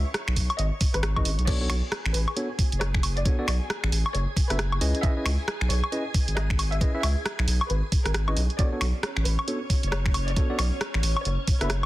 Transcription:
Already playing: C#5 C#6
0.14 cross-stick, closed hi-hat
0.28 B1, finger snap
0.36 B1, kick, open hi-hat
0.50 closed hi-hat, high woodblock
0.59 G#1 D#5, closed hi-hat
0.81 kick, open hi-hat
0.94 G#1 B4, cross-stick, closed hi-hat
1.03 cross-stick, closed hi-hat
1.16 G#1 C#4 E4 G#4 B4 D#5, kick, high woodblock
1.25 G#1, open hi-hat
1.39 B1, closed hi-hat
1.47 B3 D4 F#4 G#4 A4 C#5 D5 G#5, kick, closed hi-hat, crash
1.61 B3 D4 F#4 A4 C#5
1.70 B1, finger snap, open hi-hat, high woodblock
1.92 cross-stick, closed hi-hat
2.05 A1, finger snap
2.14 A1 B4, open hi-hat
2.28 high woodblock
2.37 B3 D4 F#4 A4 C#5, closed hi-hat
2.59 kick, open hi-hat
2.72 F#1, closed hi-hat
2.81 C#5, cross-stick, closed hi-hat
2.94 finger snap, kick
3.03 open hi-hat, high woodblock
3.17 D5, closed hi-hat
3.25 B3 D4 F#4 A4 C#5, kick, closed hi-hat
3.39 B3 D4 F#4 A4 D5
3.48 B1 D5, finger snap, open hi-hat, high woodblock
3.70 cross-stick, closed hi-hat
3.83 A1, finger snap
3.92 A1, open hi-hat
4.06 high woodblock
4.14 F#1 C#5, closed hi-hat
4.37 kick, open hi-hat
4.50 F#1 B3 D4 F#4 A4 B4 E5, cross-stick, closed hi-hat
4.59 cross-stick, closed hi-hat
4.72 high woodblock
4.81 C#2 C#4 E4 G#4 B4 D#5, open hi-hat
4.95 closed hi-hat
5.03 C#4 E4 G#4 B4 D#5 E5, kick, closed hi-hat
5.17 C#4 E4 G#4 B4 D#5
5.25 C#2, finger snap, open hi-hat, high woodblock
5.48 cross-stick, closed hi-hat
5.61 B1, finger snap
5.70 B1 C#5, open hi-hat
5.84 high woodblock
5.92 C#4 E4 G#4 B4 D#5, closed hi-hat
6.14 kick, open hi-hat
6.28 G#1, closed hi-hat
6.37 D#5, cross-stick, closed hi-hat
6.50 finger snap, kick
6.59 open hi-hat, high woodblock
6.72 E5, closed hi-hat
6.81 C#4 E4 G#4 B4 D#5, kick, closed hi-hat
6.95 C#4 E4 G#4 B4 E5
7.03 C#2 E5, finger snap, open hi-hat, high woodblock
7.26 cross-stick, closed hi-hat
7.39 B1, finger snap
7.48 B1, open hi-hat
7.61 high woodblock
7.70 G#1 B4, closed hi-hat
7.92 kick, open hi-hat
8.05 G#1 A#4, cross-stick, closed hi-hat
8.14 cross-stick, closed hi-hat
8.28 C#4 E4 G#4 B4 D#5, high woodblock
8.36 B1, open hi-hat
8.50 closed hi-hat
8.58 B3 C#4 D4 F#4 A4 C#5 D5, kick, closed hi-hat
8.72 B3 D4 F#4 A4 C#5
8.81 B1, finger snap, open hi-hat, high woodblock
9.03 cross-stick, closed hi-hat
9.17 A1, finger snap
9.25 A1 B4, open hi-hat
9.39 high woodblock
9.48 B3 D4 F#4 A4 C#5, closed hi-hat
9.70 kick, open hi-hat
9.83 F#1, closed hi-hat
9.92 C#5, cross-stick, closed hi-hat
10.06 finger snap, kick
10.14 open hi-hat, high woodblock
10.28 D5, closed hi-hat
10.36 B3 D4 F#4 A4 C#5, kick, closed hi-hat
10.50 B3 D4 F#4 A4 D5
10.59 B1 D5, finger snap, open hi-hat, high woodblock
10.81 cross-stick, closed hi-hat
10.94 A1, finger snap
11.03 A1, open hi-hat
11.17 high woodblock
11.25 F#1 C#5, closed hi-hat
11.47 kick, open hi-hat
11.61 F#1 B3 D4 F#4 A4 B4 E5, cross-stick, closed hi-hat
11.70 cross-stick, closed hi-hat

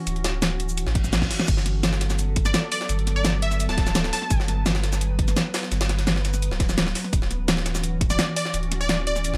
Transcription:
Already playing: E3 C#4 F#4
0.07 D1, closed hi-hat, shaker
0.16 closed hi-hat
0.24 snare, closed hi-hat, shaker
0.42 snare, closed hi-hat, shaker
0.60 closed hi-hat, shaker
0.69 shaker
0.78 closed hi-hat, reverse cymbal, shaker
0.86 A1, snare
0.95 kick, closed hi-hat, shaker
1.04 snare, shaker
1.13 snare, closed hi-hat, shaker
1.22 kick, snare
1.31 snare, closed hi-hat, open hi-hat, shaker
1.40 snare
1.48 G1 F#3 B3 A4, kick, closed hi-hat, crash, shaker
1.57 snare
1.66 snare, closed hi-hat, shaker
1.83 snare, closed hi-hat, shaker
1.93 snare
2.01 snare, closed hi-hat, shaker
2.10 snare, shaker
2.19 closed hi-hat, shaker
2.36 kick, closed hi-hat
2.45 D5, snare, closed hi-hat, shaker
2.54 snare, closed hi-hat, shaker
2.72 D5, closed hi-hat, open hi-hat, shaker
2.81 snare
2.89 G1, closed hi-hat, shaker
2.99 closed hi-hat
3.07 snare, closed hi-hat, shaker
3.16 D5
3.25 snare, closed hi-hat, shaker
3.42 E5, closed hi-hat, shaker
3.51 snare, shaker
3.60 closed hi-hat, shaker
3.69 D1 A5, snare
3.78 kick, snare, closed hi-hat
3.87 snare, shaker
3.95 snare, closed hi-hat, shaker
4.04 snare
4.13 A5, snare, closed hi-hat, open hi-hat, shaker
4.22 snare
4.30 G1 B4, kick, closed hi-hat, shaker
4.40 snare
4.48 snare, closed hi-hat, shaker
4.66 snare, closed hi-hat, shaker
4.75 snare
4.84 snare, closed hi-hat, shaker
4.93 snare, shaker
5.01 closed hi-hat, shaker
5.19 kick, closed hi-hat
5.28 snare, closed hi-hat, shaker
5.36 snare, closed hi-hat, shaker
5.54 snare, closed hi-hat, open hi-hat, shaker
5.63 snare
5.72 G1, snare, closed hi-hat, shaker
5.81 snare, closed hi-hat
5.89 snare, closed hi-hat, shaker
5.99 snare, closed hi-hat
6.07 snare, closed hi-hat, shaker
6.16 snare
6.25 snare, closed hi-hat, shaker
6.34 snare, shaker
6.42 closed hi-hat, shaker
6.51 D1, snare
6.60 kick, snare, closed hi-hat
6.69 snare, shaker
6.78 snare, closed hi-hat, shaker
6.87 snare
6.95 snare, closed hi-hat, open hi-hat, shaker
7.04 snare
7.13 D1 E3 C#4 F#4, kick, closed hi-hat, shaker
7.22 snare
7.31 snare, closed hi-hat, shaker
7.48 snare, closed hi-hat, shaker
7.57 snare
7.66 snare, closed hi-hat, shaker
7.75 snare, shaker
7.84 closed hi-hat, shaker
8.01 kick, closed hi-hat
8.10 D5, snare, closed hi-hat, shaker
8.19 snare, closed hi-hat, shaker
8.36 D5, closed hi-hat, open hi-hat, shaker
8.45 snare
8.54 D1, closed hi-hat, shaker
8.63 closed hi-hat
8.72 snare, closed hi-hat, shaker
8.81 D5
8.89 snare, closed hi-hat, shaker
9.07 D5, closed hi-hat, shaker
9.16 snare, shaker
9.24 closed hi-hat, shaker
9.33 A1, snare

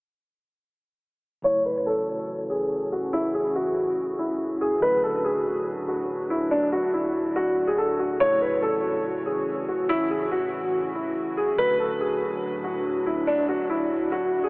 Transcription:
1.42 A2 C#3 E3 F#3 A3 C#4 E4 F#4 C#5
1.65 B4
1.86 A4
2.50 G#4
2.92 F#4
3.13 E4
3.34 G#4
3.55 F#4
4.19 E4
4.61 G#4
4.81 D3 F#3 A3 D4 F#4 B4
5.03 A4
5.25 G#4
5.88 F#4
6.30 E4
6.51 D4
6.72 F#4
6.93 E4
7.36 F#4
7.67 G#4
7.78 A4
7.99 F#4
8.18 C#3 E3 F#3 A3 C#4 E4 C#5
8.41 B4
8.62 A4
9.26 G#4
9.68 F#4
9.89 E4
10.10 G#4
10.32 F#4
10.95 E4
11.37 G#4
11.57 A2 D3 F#3 A3 D4 F#4 B4
11.80 A4
12.01 G#4
12.64 F#4
13.06 E4
13.27 D4
13.49 F#4
13.70 E4
14.12 F#4
14.44 G#4

